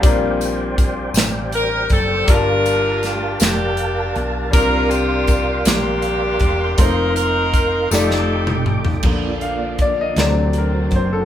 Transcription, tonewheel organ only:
0, 0, Header, 1, 2, 480
1, 0, Start_track
1, 0, Key_signature, -2, "major"
1, 0, Tempo, 750939
1, 20, Time_signature, 6, 3, 24, 8
1, 7191, End_track
2, 0, Start_track
2, 0, Title_t, "Tonewheel organ"
2, 0, Program_c, 0, 16
2, 0, Note_on_c, 0, 67, 58
2, 18, Note_on_c, 0, 74, 53
2, 20, Note_on_c, 0, 79, 60
2, 22, Note_on_c, 0, 72, 56
2, 1443, Note_off_c, 0, 74, 0
2, 1444, Note_off_c, 0, 79, 0
2, 1445, Note_off_c, 0, 72, 0
2, 1463, Note_on_c, 0, 70, 57
2, 1463, Note_on_c, 0, 81, 73
2, 1465, Note_on_c, 0, 77, 54
2, 2869, Note_off_c, 0, 67, 0
2, 2885, Note_off_c, 0, 81, 0
2, 2897, Note_on_c, 0, 84, 74
2, 2899, Note_on_c, 0, 74, 57
2, 4323, Note_off_c, 0, 74, 0
2, 4333, Note_on_c, 0, 63, 60
2, 5034, Note_off_c, 0, 70, 0
2, 5035, Note_off_c, 0, 77, 0
2, 5036, Note_off_c, 0, 84, 0
2, 5051, Note_on_c, 0, 69, 64
2, 5054, Note_on_c, 0, 79, 59
2, 5054, Note_on_c, 0, 86, 70
2, 5762, Note_off_c, 0, 63, 0
2, 5768, Note_off_c, 0, 69, 0
2, 5769, Note_off_c, 0, 79, 0
2, 5769, Note_off_c, 0, 86, 0
2, 5778, Note_on_c, 0, 74, 53
2, 5780, Note_on_c, 0, 65, 47
2, 5781, Note_on_c, 0, 58, 51
2, 5783, Note_on_c, 0, 62, 45
2, 6492, Note_off_c, 0, 74, 0
2, 6493, Note_off_c, 0, 65, 0
2, 6494, Note_off_c, 0, 58, 0
2, 6508, Note_on_c, 0, 54, 58
2, 6508, Note_on_c, 0, 72, 61
2, 6511, Note_on_c, 0, 66, 55
2, 7191, Note_off_c, 0, 54, 0
2, 7191, Note_off_c, 0, 62, 0
2, 7191, Note_off_c, 0, 66, 0
2, 7191, Note_off_c, 0, 72, 0
2, 7191, End_track
0, 0, End_of_file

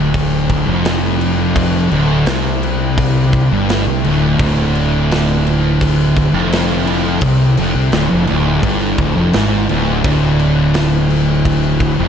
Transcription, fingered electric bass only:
0, 0, Header, 1, 2, 480
1, 0, Start_track
1, 0, Key_signature, -1, "minor"
1, 0, Tempo, 706714
1, 1063, Time_signature, 4, 2, 24, 8
1, 8205, End_track
2, 0, Start_track
2, 0, Title_t, "Fingered electric bass"
2, 0, Program_c, 0, 33
2, 0, Note_on_c, 0, 26, 89
2, 435, Note_off_c, 0, 26, 0
2, 466, Note_on_c, 0, 29, 101
2, 1279, Note_off_c, 0, 29, 0
2, 1301, Note_on_c, 0, 26, 89
2, 1526, Note_off_c, 0, 26, 0
2, 1542, Note_on_c, 0, 36, 88
2, 2357, Note_off_c, 0, 36, 0
2, 2392, Note_on_c, 0, 31, 93
2, 2612, Note_off_c, 0, 31, 0
2, 2626, Note_on_c, 0, 36, 108
2, 2737, Note_off_c, 0, 36, 0
2, 2748, Note_on_c, 0, 26, 106
2, 2970, Note_off_c, 0, 26, 0
2, 2986, Note_on_c, 0, 26, 103
2, 4279, Note_off_c, 0, 26, 0
2, 4300, Note_on_c, 0, 29, 94
2, 4876, Note_off_c, 0, 29, 0
2, 4903, Note_on_c, 0, 36, 91
2, 5127, Note_off_c, 0, 36, 0
2, 5152, Note_on_c, 0, 29, 88
2, 5261, Note_off_c, 0, 29, 0
2, 5264, Note_on_c, 0, 36, 105
2, 5376, Note_off_c, 0, 36, 0
2, 5390, Note_on_c, 0, 26, 100
2, 5500, Note_off_c, 0, 26, 0
2, 5517, Note_on_c, 0, 29, 95
2, 5623, Note_off_c, 0, 29, 0
2, 5640, Note_on_c, 0, 26, 101
2, 5856, Note_off_c, 0, 26, 0
2, 5862, Note_on_c, 0, 31, 100
2, 6087, Note_off_c, 0, 31, 0
2, 6106, Note_on_c, 0, 26, 101
2, 6217, Note_off_c, 0, 26, 0
2, 6228, Note_on_c, 0, 29, 98
2, 6338, Note_off_c, 0, 29, 0
2, 6352, Note_on_c, 0, 32, 105
2, 6572, Note_off_c, 0, 32, 0
2, 6594, Note_on_c, 0, 26, 100
2, 6813, Note_off_c, 0, 26, 0
2, 6822, Note_on_c, 0, 26, 92
2, 8114, Note_off_c, 0, 26, 0
2, 8150, Note_on_c, 0, 29, 97
2, 8205, Note_off_c, 0, 29, 0
2, 8205, End_track
0, 0, End_of_file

